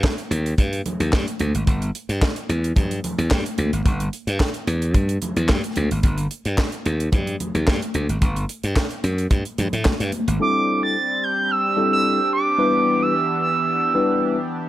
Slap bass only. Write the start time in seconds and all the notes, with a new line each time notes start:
0.31 D#2
0.58 G2
1.00 D#2
1.13 G2
1.40 D2
1.54 G#1
1.67 G1
2.09 G2
2.49 E2
2.77 G2
3.18 E2
3.31 G2
3.58 D2
3.73 G#1
3.86 G1
4.27 G2
4.67 E2
4.94 G2
5.36 E2
5.49 G2
5.77 D2
5.91 G#1
6.04 G1
6.46 G2
6.86 D#2
7.13 G2
7.55 D#2
7.68 G2
7.95 D2
8.09 G#1
8.22 G1
8.64 G2
9.04 F#2
9.31 G2
9.58 G2
9.73 A2
10.00 G2
10.28 G#1